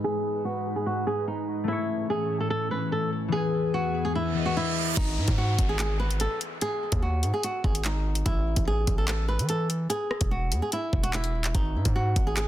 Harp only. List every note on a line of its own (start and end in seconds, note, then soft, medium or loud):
0.00 1.73 G#3 medium
0.00 0.89 B3 soft
0.00 1.64 D#4 medium
0.00 1.67 B4 medium
1.64 3.43 A3 medium
1.68 4.29 E4 medium
1.72 3.64 C#5 medium
3.28 4.33 E3 medium
3.33 4.35 B3 medium
3.37 5.64 G#4 medium
4.34 5.02 E3 soft
4.34 7.46 B3 soft
4.38 6.16 D#5 medium